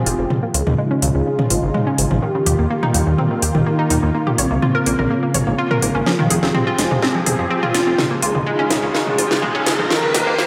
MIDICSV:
0, 0, Header, 1, 7, 480
1, 0, Start_track
1, 0, Tempo, 480000
1, 305, Time_signature, 4, 2, 24, 8
1, 10467, End_track
2, 0, Start_track
2, 0, Title_t, "Analog polysynth"
2, 0, Program_c, 0, 90
2, 0, Note_on_c, 0, 65, 98
2, 452, Note_off_c, 0, 65, 0
2, 544, Note_on_c, 0, 68, 110
2, 2132, Note_off_c, 0, 68, 0
2, 2224, Note_on_c, 0, 67, 111
2, 2852, Note_off_c, 0, 67, 0
2, 3664, Note_on_c, 0, 63, 100
2, 4292, Note_off_c, 0, 63, 0
2, 4385, Note_on_c, 0, 60, 109
2, 5972, Note_off_c, 0, 60, 0
2, 6065, Note_on_c, 0, 65, 113
2, 6692, Note_off_c, 0, 65, 0
2, 7505, Note_on_c, 0, 65, 98
2, 8132, Note_off_c, 0, 65, 0
2, 8226, Note_on_c, 0, 68, 114
2, 9812, Note_off_c, 0, 68, 0
2, 9905, Note_on_c, 0, 70, 107
2, 10467, Note_off_c, 0, 70, 0
2, 10467, End_track
3, 0, Start_track
3, 0, Title_t, "Analog synth pad"
3, 0, Program_c, 1, 89
3, 0, Note_on_c, 1, 53, 79
3, 0, Note_on_c, 1, 60, 75
3, 0, Note_on_c, 1, 67, 70
3, 0, Note_on_c, 1, 68, 89
3, 285, Note_off_c, 1, 53, 0
3, 285, Note_off_c, 1, 60, 0
3, 285, Note_off_c, 1, 67, 0
3, 285, Note_off_c, 1, 68, 0
3, 305, Note_on_c, 1, 49, 77
3, 305, Note_on_c, 1, 56, 69
3, 305, Note_on_c, 1, 63, 69
3, 305, Note_on_c, 1, 65, 88
3, 2206, Note_off_c, 1, 49, 0
3, 2206, Note_off_c, 1, 56, 0
3, 2206, Note_off_c, 1, 63, 0
3, 2206, Note_off_c, 1, 65, 0
3, 2224, Note_on_c, 1, 51, 81
3, 2224, Note_on_c, 1, 58, 73
3, 2224, Note_on_c, 1, 65, 72
3, 2224, Note_on_c, 1, 67, 86
3, 4125, Note_off_c, 1, 51, 0
3, 4125, Note_off_c, 1, 67, 0
3, 4144, Note_on_c, 1, 49, 72
3, 6026, Note_off_c, 1, 58, 0
3, 6026, Note_off_c, 1, 65, 0
3, 6045, Note_off_c, 1, 49, 0
3, 6065, Note_on_c, 1, 53, 80
3, 6065, Note_on_c, 1, 60, 73
3, 6065, Note_on_c, 1, 67, 72
3, 6065, Note_on_c, 1, 68, 84
3, 7966, Note_off_c, 1, 53, 0
3, 7966, Note_off_c, 1, 60, 0
3, 7966, Note_off_c, 1, 67, 0
3, 7966, Note_off_c, 1, 68, 0
3, 7984, Note_on_c, 1, 49, 83
3, 7984, Note_on_c, 1, 56, 70
3, 7984, Note_on_c, 1, 63, 74
3, 7984, Note_on_c, 1, 65, 90
3, 9885, Note_off_c, 1, 49, 0
3, 9885, Note_off_c, 1, 56, 0
3, 9885, Note_off_c, 1, 63, 0
3, 9885, Note_off_c, 1, 65, 0
3, 9904, Note_on_c, 1, 51, 80
3, 9904, Note_on_c, 1, 58, 73
3, 9904, Note_on_c, 1, 65, 74
3, 9904, Note_on_c, 1, 67, 89
3, 10467, Note_off_c, 1, 51, 0
3, 10467, Note_off_c, 1, 58, 0
3, 10467, Note_off_c, 1, 65, 0
3, 10467, Note_off_c, 1, 67, 0
3, 10467, End_track
4, 0, Start_track
4, 0, Title_t, "Synth arpeggio sound"
4, 0, Program_c, 2, 84
4, 64, Note_on_c, 2, 65, 97
4, 182, Note_off_c, 2, 65, 0
4, 188, Note_on_c, 2, 60, 73
4, 274, Note_off_c, 2, 60, 0
4, 304, Note_on_c, 2, 49, 81
4, 396, Note_off_c, 2, 49, 0
4, 428, Note_on_c, 2, 58, 77
4, 480, Note_off_c, 2, 58, 0
4, 544, Note_on_c, 2, 65, 74
4, 662, Note_off_c, 2, 65, 0
4, 669, Note_on_c, 2, 49, 74
4, 754, Note_off_c, 2, 49, 0
4, 785, Note_on_c, 2, 56, 99
4, 876, Note_off_c, 2, 56, 0
4, 908, Note_on_c, 2, 61, 100
4, 994, Note_off_c, 2, 61, 0
4, 1024, Note_on_c, 2, 49, 100
4, 1116, Note_off_c, 2, 49, 0
4, 1148, Note_on_c, 2, 61, 77
4, 1200, Note_off_c, 2, 61, 0
4, 1264, Note_on_c, 2, 49, 80
4, 1356, Note_off_c, 2, 49, 0
4, 1388, Note_on_c, 2, 49, 76
4, 1440, Note_off_c, 2, 49, 0
4, 1504, Note_on_c, 2, 65, 75
4, 1622, Note_off_c, 2, 65, 0
4, 1628, Note_on_c, 2, 49, 77
4, 1714, Note_off_c, 2, 49, 0
4, 1744, Note_on_c, 2, 56, 101
4, 1836, Note_off_c, 2, 56, 0
4, 1868, Note_on_c, 2, 61, 97
4, 1954, Note_off_c, 2, 61, 0
4, 1984, Note_on_c, 2, 49, 72
4, 2102, Note_off_c, 2, 49, 0
4, 2108, Note_on_c, 2, 53, 73
4, 2219, Note_off_c, 2, 53, 0
4, 2224, Note_on_c, 2, 51, 100
4, 2316, Note_off_c, 2, 51, 0
4, 2348, Note_on_c, 2, 49, 102
4, 2434, Note_off_c, 2, 49, 0
4, 2464, Note_on_c, 2, 67, 77
4, 2582, Note_off_c, 2, 67, 0
4, 2588, Note_on_c, 2, 58, 75
4, 2674, Note_off_c, 2, 58, 0
4, 2704, Note_on_c, 2, 58, 98
4, 2796, Note_off_c, 2, 58, 0
4, 2828, Note_on_c, 2, 63, 99
4, 2914, Note_off_c, 2, 63, 0
4, 2944, Note_on_c, 2, 55, 72
4, 3036, Note_off_c, 2, 55, 0
4, 3068, Note_on_c, 2, 46, 77
4, 3179, Note_off_c, 2, 46, 0
4, 3184, Note_on_c, 2, 60, 80
4, 3276, Note_off_c, 2, 60, 0
4, 3308, Note_on_c, 2, 51, 77
4, 3394, Note_off_c, 2, 51, 0
4, 3424, Note_on_c, 2, 67, 75
4, 3542, Note_off_c, 2, 67, 0
4, 3548, Note_on_c, 2, 51, 75
4, 3634, Note_off_c, 2, 51, 0
4, 3664, Note_on_c, 2, 58, 98
4, 3756, Note_off_c, 2, 58, 0
4, 3788, Note_on_c, 2, 63, 100
4, 3874, Note_off_c, 2, 63, 0
4, 3904, Note_on_c, 2, 63, 94
4, 4022, Note_off_c, 2, 63, 0
4, 4028, Note_on_c, 2, 58, 74
4, 4114, Note_off_c, 2, 58, 0
4, 4144, Note_on_c, 2, 58, 85
4, 4236, Note_off_c, 2, 58, 0
4, 4268, Note_on_c, 2, 67, 80
4, 4320, Note_off_c, 2, 67, 0
4, 4384, Note_on_c, 2, 73, 80
4, 4502, Note_off_c, 2, 73, 0
4, 4508, Note_on_c, 2, 58, 74
4, 4594, Note_off_c, 2, 58, 0
4, 4624, Note_on_c, 2, 65, 96
4, 4716, Note_off_c, 2, 65, 0
4, 4748, Note_on_c, 2, 70, 100
4, 4834, Note_off_c, 2, 70, 0
4, 4864, Note_on_c, 2, 58, 97
4, 4956, Note_off_c, 2, 58, 0
4, 4988, Note_on_c, 2, 70, 79
4, 5040, Note_off_c, 2, 70, 0
4, 5104, Note_on_c, 2, 58, 86
4, 5196, Note_off_c, 2, 58, 0
4, 5228, Note_on_c, 2, 58, 77
4, 5280, Note_off_c, 2, 58, 0
4, 5344, Note_on_c, 2, 73, 75
4, 5462, Note_off_c, 2, 73, 0
4, 5468, Note_on_c, 2, 58, 77
4, 5554, Note_off_c, 2, 58, 0
4, 5584, Note_on_c, 2, 65, 98
4, 5676, Note_off_c, 2, 65, 0
4, 5708, Note_on_c, 2, 70, 99
4, 5794, Note_off_c, 2, 70, 0
4, 5825, Note_on_c, 2, 58, 74
4, 5943, Note_off_c, 2, 58, 0
4, 5948, Note_on_c, 2, 61, 76
4, 6059, Note_off_c, 2, 61, 0
4, 6064, Note_on_c, 2, 53, 98
4, 6156, Note_off_c, 2, 53, 0
4, 6188, Note_on_c, 2, 51, 103
4, 6274, Note_off_c, 2, 51, 0
4, 6305, Note_on_c, 2, 68, 78
4, 6423, Note_off_c, 2, 68, 0
4, 6428, Note_on_c, 2, 60, 73
4, 6514, Note_off_c, 2, 60, 0
4, 6545, Note_on_c, 2, 60, 100
4, 6636, Note_off_c, 2, 60, 0
4, 6669, Note_on_c, 2, 65, 101
4, 6754, Note_off_c, 2, 65, 0
4, 6785, Note_on_c, 2, 56, 74
4, 6876, Note_off_c, 2, 56, 0
4, 6909, Note_on_c, 2, 48, 78
4, 7019, Note_off_c, 2, 48, 0
4, 7025, Note_on_c, 2, 60, 84
4, 7116, Note_off_c, 2, 60, 0
4, 7148, Note_on_c, 2, 53, 79
4, 7234, Note_off_c, 2, 53, 0
4, 7264, Note_on_c, 2, 68, 77
4, 7382, Note_off_c, 2, 68, 0
4, 7388, Note_on_c, 2, 53, 80
4, 7474, Note_off_c, 2, 53, 0
4, 7505, Note_on_c, 2, 60, 98
4, 7596, Note_off_c, 2, 60, 0
4, 7628, Note_on_c, 2, 65, 98
4, 7714, Note_off_c, 2, 65, 0
4, 7744, Note_on_c, 2, 65, 100
4, 7863, Note_off_c, 2, 65, 0
4, 7869, Note_on_c, 2, 60, 73
4, 7954, Note_off_c, 2, 60, 0
4, 7985, Note_on_c, 2, 49, 86
4, 8076, Note_off_c, 2, 49, 0
4, 8109, Note_on_c, 2, 58, 80
4, 8160, Note_off_c, 2, 58, 0
4, 8225, Note_on_c, 2, 65, 75
4, 8343, Note_off_c, 2, 65, 0
4, 8348, Note_on_c, 2, 49, 77
4, 8434, Note_off_c, 2, 49, 0
4, 8465, Note_on_c, 2, 56, 101
4, 8556, Note_off_c, 2, 56, 0
4, 8588, Note_on_c, 2, 61, 101
4, 8674, Note_off_c, 2, 61, 0
4, 8704, Note_on_c, 2, 49, 102
4, 8796, Note_off_c, 2, 49, 0
4, 8828, Note_on_c, 2, 61, 78
4, 8880, Note_off_c, 2, 61, 0
4, 8944, Note_on_c, 2, 49, 82
4, 9036, Note_off_c, 2, 49, 0
4, 9068, Note_on_c, 2, 49, 79
4, 9120, Note_off_c, 2, 49, 0
4, 9184, Note_on_c, 2, 65, 77
4, 9302, Note_off_c, 2, 65, 0
4, 9308, Note_on_c, 2, 49, 78
4, 9394, Note_off_c, 2, 49, 0
4, 9424, Note_on_c, 2, 56, 104
4, 9516, Note_off_c, 2, 56, 0
4, 9548, Note_on_c, 2, 61, 103
4, 9634, Note_off_c, 2, 61, 0
4, 9664, Note_on_c, 2, 49, 73
4, 9782, Note_off_c, 2, 49, 0
4, 9788, Note_on_c, 2, 53, 75
4, 9899, Note_off_c, 2, 53, 0
4, 9904, Note_on_c, 2, 51, 99
4, 9996, Note_off_c, 2, 51, 0
4, 10028, Note_on_c, 2, 49, 108
4, 10114, Note_off_c, 2, 49, 0
4, 10144, Note_on_c, 2, 67, 80
4, 10262, Note_off_c, 2, 67, 0
4, 10268, Note_on_c, 2, 58, 76
4, 10354, Note_off_c, 2, 58, 0
4, 10384, Note_on_c, 2, 58, 99
4, 10467, Note_off_c, 2, 58, 0
4, 10467, End_track
5, 0, Start_track
5, 0, Title_t, "Analog synth bass"
5, 0, Program_c, 3, 38
5, 64, Note_on_c, 3, 29, 88
5, 143, Note_off_c, 3, 29, 0
5, 188, Note_on_c, 3, 29, 83
5, 262, Note_off_c, 3, 29, 0
5, 544, Note_on_c, 3, 37, 95
5, 623, Note_off_c, 3, 37, 0
5, 668, Note_on_c, 3, 39, 80
5, 742, Note_off_c, 3, 39, 0
5, 1024, Note_on_c, 3, 37, 87
5, 1103, Note_off_c, 3, 37, 0
5, 1148, Note_on_c, 3, 37, 79
5, 1222, Note_off_c, 3, 37, 0
5, 1504, Note_on_c, 3, 32, 94
5, 1583, Note_off_c, 3, 32, 0
5, 1628, Note_on_c, 3, 32, 81
5, 1702, Note_off_c, 3, 32, 0
5, 1984, Note_on_c, 3, 32, 93
5, 2063, Note_off_c, 3, 32, 0
5, 2108, Note_on_c, 3, 32, 79
5, 2182, Note_off_c, 3, 32, 0
5, 2464, Note_on_c, 3, 39, 95
5, 2543, Note_off_c, 3, 39, 0
5, 2588, Note_on_c, 3, 39, 82
5, 2662, Note_off_c, 3, 39, 0
5, 2944, Note_on_c, 3, 39, 92
5, 3023, Note_off_c, 3, 39, 0
5, 3068, Note_on_c, 3, 39, 81
5, 3142, Note_off_c, 3, 39, 0
5, 3424, Note_on_c, 3, 39, 96
5, 3503, Note_off_c, 3, 39, 0
5, 3548, Note_on_c, 3, 27, 84
5, 3622, Note_off_c, 3, 27, 0
5, 3904, Note_on_c, 3, 39, 94
5, 3983, Note_off_c, 3, 39, 0
5, 4029, Note_on_c, 3, 39, 83
5, 4102, Note_off_c, 3, 39, 0
5, 4385, Note_on_c, 3, 34, 96
5, 4463, Note_off_c, 3, 34, 0
5, 4509, Note_on_c, 3, 36, 85
5, 4582, Note_off_c, 3, 36, 0
5, 4865, Note_on_c, 3, 34, 91
5, 4944, Note_off_c, 3, 34, 0
5, 4989, Note_on_c, 3, 34, 80
5, 5062, Note_off_c, 3, 34, 0
5, 5345, Note_on_c, 3, 32, 91
5, 5424, Note_off_c, 3, 32, 0
5, 5469, Note_on_c, 3, 32, 80
5, 5542, Note_off_c, 3, 32, 0
5, 5825, Note_on_c, 3, 32, 89
5, 5903, Note_off_c, 3, 32, 0
5, 5949, Note_on_c, 3, 32, 82
5, 6022, Note_off_c, 3, 32, 0
5, 6305, Note_on_c, 3, 29, 96
5, 6384, Note_off_c, 3, 29, 0
5, 6429, Note_on_c, 3, 29, 85
5, 6503, Note_off_c, 3, 29, 0
5, 6785, Note_on_c, 3, 29, 89
5, 6863, Note_off_c, 3, 29, 0
5, 6909, Note_on_c, 3, 29, 80
5, 6982, Note_off_c, 3, 29, 0
5, 7265, Note_on_c, 3, 29, 94
5, 7344, Note_off_c, 3, 29, 0
5, 7389, Note_on_c, 3, 41, 80
5, 7463, Note_off_c, 3, 41, 0
5, 7745, Note_on_c, 3, 29, 90
5, 7824, Note_off_c, 3, 29, 0
5, 7869, Note_on_c, 3, 29, 83
5, 7942, Note_off_c, 3, 29, 0
5, 8225, Note_on_c, 3, 37, 93
5, 8303, Note_off_c, 3, 37, 0
5, 8349, Note_on_c, 3, 39, 83
5, 8423, Note_off_c, 3, 39, 0
5, 8705, Note_on_c, 3, 37, 92
5, 8784, Note_off_c, 3, 37, 0
5, 8828, Note_on_c, 3, 37, 79
5, 8902, Note_off_c, 3, 37, 0
5, 9185, Note_on_c, 3, 32, 95
5, 9264, Note_off_c, 3, 32, 0
5, 9309, Note_on_c, 3, 32, 79
5, 9383, Note_off_c, 3, 32, 0
5, 9665, Note_on_c, 3, 32, 92
5, 9744, Note_off_c, 3, 32, 0
5, 9790, Note_on_c, 3, 32, 83
5, 9863, Note_off_c, 3, 32, 0
5, 10145, Note_on_c, 3, 39, 99
5, 10224, Note_off_c, 3, 39, 0
5, 10270, Note_on_c, 3, 39, 84
5, 10343, Note_off_c, 3, 39, 0
5, 10467, End_track
6, 0, Start_track
6, 0, Title_t, "Riser"
6, 0, Program_c, 4, 103
6, 6064, Note_on_c, 4, 60, 79
6, 10467, Note_off_c, 4, 60, 0
6, 10467, End_track
7, 0, Start_track
7, 0, Title_t, "Drums"
7, 64, Note_on_c, 9, 46, 84
7, 164, Note_off_c, 9, 46, 0
7, 304, Note_on_c, 9, 45, 94
7, 404, Note_off_c, 9, 45, 0
7, 544, Note_on_c, 9, 46, 107
7, 644, Note_off_c, 9, 46, 0
7, 668, Note_on_c, 9, 45, 91
7, 768, Note_off_c, 9, 45, 0
7, 1024, Note_on_c, 9, 45, 88
7, 1024, Note_on_c, 9, 46, 93
7, 1124, Note_off_c, 9, 45, 0
7, 1124, Note_off_c, 9, 46, 0
7, 1388, Note_on_c, 9, 45, 93
7, 1488, Note_off_c, 9, 45, 0
7, 1504, Note_on_c, 9, 46, 107
7, 1604, Note_off_c, 9, 46, 0
7, 1744, Note_on_c, 9, 45, 90
7, 1844, Note_off_c, 9, 45, 0
7, 1984, Note_on_c, 9, 46, 91
7, 2084, Note_off_c, 9, 46, 0
7, 2108, Note_on_c, 9, 45, 91
7, 2208, Note_off_c, 9, 45, 0
7, 2464, Note_on_c, 9, 45, 88
7, 2464, Note_on_c, 9, 46, 106
7, 2564, Note_off_c, 9, 45, 0
7, 2564, Note_off_c, 9, 46, 0
7, 2828, Note_on_c, 9, 45, 88
7, 2928, Note_off_c, 9, 45, 0
7, 2944, Note_on_c, 9, 46, 91
7, 3044, Note_off_c, 9, 46, 0
7, 3184, Note_on_c, 9, 45, 88
7, 3284, Note_off_c, 9, 45, 0
7, 3424, Note_on_c, 9, 46, 109
7, 3524, Note_off_c, 9, 46, 0
7, 3548, Note_on_c, 9, 45, 86
7, 3648, Note_off_c, 9, 45, 0
7, 3904, Note_on_c, 9, 45, 85
7, 3904, Note_on_c, 9, 46, 90
7, 4004, Note_off_c, 9, 45, 0
7, 4004, Note_off_c, 9, 46, 0
7, 4268, Note_on_c, 9, 45, 84
7, 4368, Note_off_c, 9, 45, 0
7, 4384, Note_on_c, 9, 46, 107
7, 4484, Note_off_c, 9, 46, 0
7, 4624, Note_on_c, 9, 45, 88
7, 4724, Note_off_c, 9, 45, 0
7, 4864, Note_on_c, 9, 46, 95
7, 4964, Note_off_c, 9, 46, 0
7, 4988, Note_on_c, 9, 45, 85
7, 5088, Note_off_c, 9, 45, 0
7, 5344, Note_on_c, 9, 45, 90
7, 5344, Note_on_c, 9, 46, 104
7, 5444, Note_off_c, 9, 45, 0
7, 5444, Note_off_c, 9, 46, 0
7, 5708, Note_on_c, 9, 45, 84
7, 5808, Note_off_c, 9, 45, 0
7, 5824, Note_on_c, 9, 46, 91
7, 5924, Note_off_c, 9, 46, 0
7, 6065, Note_on_c, 9, 38, 50
7, 6165, Note_off_c, 9, 38, 0
7, 6189, Note_on_c, 9, 45, 88
7, 6289, Note_off_c, 9, 45, 0
7, 6304, Note_on_c, 9, 46, 99
7, 6404, Note_off_c, 9, 46, 0
7, 6429, Note_on_c, 9, 38, 44
7, 6529, Note_off_c, 9, 38, 0
7, 6545, Note_on_c, 9, 45, 88
7, 6645, Note_off_c, 9, 45, 0
7, 6785, Note_on_c, 9, 38, 52
7, 6785, Note_on_c, 9, 46, 93
7, 6885, Note_off_c, 9, 38, 0
7, 6885, Note_off_c, 9, 46, 0
7, 6909, Note_on_c, 9, 45, 90
7, 7009, Note_off_c, 9, 45, 0
7, 7025, Note_on_c, 9, 38, 51
7, 7125, Note_off_c, 9, 38, 0
7, 7265, Note_on_c, 9, 45, 86
7, 7265, Note_on_c, 9, 46, 103
7, 7365, Note_off_c, 9, 45, 0
7, 7365, Note_off_c, 9, 46, 0
7, 7629, Note_on_c, 9, 45, 86
7, 7729, Note_off_c, 9, 45, 0
7, 7745, Note_on_c, 9, 38, 57
7, 7745, Note_on_c, 9, 46, 88
7, 7845, Note_off_c, 9, 38, 0
7, 7845, Note_off_c, 9, 46, 0
7, 7984, Note_on_c, 9, 38, 58
7, 7984, Note_on_c, 9, 45, 89
7, 8084, Note_off_c, 9, 38, 0
7, 8084, Note_off_c, 9, 45, 0
7, 8225, Note_on_c, 9, 46, 97
7, 8325, Note_off_c, 9, 46, 0
7, 8349, Note_on_c, 9, 45, 94
7, 8449, Note_off_c, 9, 45, 0
7, 8705, Note_on_c, 9, 38, 63
7, 8705, Note_on_c, 9, 45, 91
7, 8705, Note_on_c, 9, 46, 89
7, 8805, Note_off_c, 9, 38, 0
7, 8805, Note_off_c, 9, 45, 0
7, 8805, Note_off_c, 9, 46, 0
7, 8945, Note_on_c, 9, 38, 63
7, 9045, Note_off_c, 9, 38, 0
7, 9069, Note_on_c, 9, 45, 93
7, 9169, Note_off_c, 9, 45, 0
7, 9185, Note_on_c, 9, 46, 106
7, 9285, Note_off_c, 9, 46, 0
7, 9309, Note_on_c, 9, 38, 57
7, 9409, Note_off_c, 9, 38, 0
7, 9425, Note_on_c, 9, 45, 92
7, 9525, Note_off_c, 9, 45, 0
7, 9665, Note_on_c, 9, 38, 74
7, 9665, Note_on_c, 9, 46, 89
7, 9765, Note_off_c, 9, 38, 0
7, 9765, Note_off_c, 9, 46, 0
7, 9789, Note_on_c, 9, 45, 88
7, 9889, Note_off_c, 9, 45, 0
7, 9905, Note_on_c, 9, 38, 75
7, 10005, Note_off_c, 9, 38, 0
7, 10144, Note_on_c, 9, 38, 76
7, 10144, Note_on_c, 9, 45, 95
7, 10144, Note_on_c, 9, 46, 102
7, 10244, Note_off_c, 9, 38, 0
7, 10244, Note_off_c, 9, 45, 0
7, 10244, Note_off_c, 9, 46, 0
7, 10385, Note_on_c, 9, 38, 82
7, 10467, Note_off_c, 9, 38, 0
7, 10467, End_track
0, 0, End_of_file